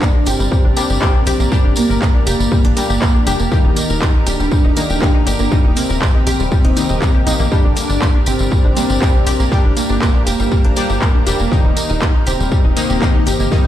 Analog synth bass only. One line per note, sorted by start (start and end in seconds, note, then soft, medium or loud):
0.27 0.36 G1 loud
0.40 0.48 G1 medium
0.65 0.73 G1 medium
0.90 0.98 G1 medium
1.27 1.36 A#1 loud
1.40 1.48 A#1 medium
1.65 1.73 G1 medium
1.90 1.98 G1 medium
2.27 2.36 F1 loud
2.40 2.48 G1 medium
2.65 2.73 G1 medium
2.90 2.98 G1 medium
3.27 3.36 F1 loud
3.40 3.48 F1 medium
3.65 3.73 D#1 medium
3.90 3.98 D#1 medium
4.27 4.36 D#1 loud
4.40 4.48 D#1 medium
4.64 4.73 D#1 medium
4.89 4.98 D#1 medium
5.27 5.36 G1 loud
5.39 5.48 G1 medium
5.65 5.73 D#1 medium
5.90 5.98 D#1 medium
6.27 6.36 A#1 loud
6.40 6.48 D#1 medium
6.65 6.73 D#1 medium
6.90 6.98 D#1 medium
7.27 7.36 A#1 loud
7.40 7.48 A#1 medium
7.65 7.73 G1 medium
7.90 7.98 G1 medium
8.27 8.36 G1 loud
8.40 8.48 G1 medium
8.65 8.73 G1 medium
8.90 8.98 G1 medium
9.27 9.36 A#1 loud
9.40 9.48 A#1 medium
9.65 9.73 G1 medium
9.90 9.98 G1 medium
10.27 10.36 F1 loud
10.39 10.48 G1 medium
10.65 10.73 G1 medium
10.90 10.98 G1 medium
11.27 11.36 F1 loud
11.40 11.48 F1 medium
11.65 11.73 D#1 medium
11.90 11.98 D#1 medium
12.27 12.36 D#1 medium
12.40 12.48 D#1 medium
12.65 12.73 D#1 medium
12.90 12.98 D#1 medium
13.27 13.36 G1 loud
13.40 13.48 G1 medium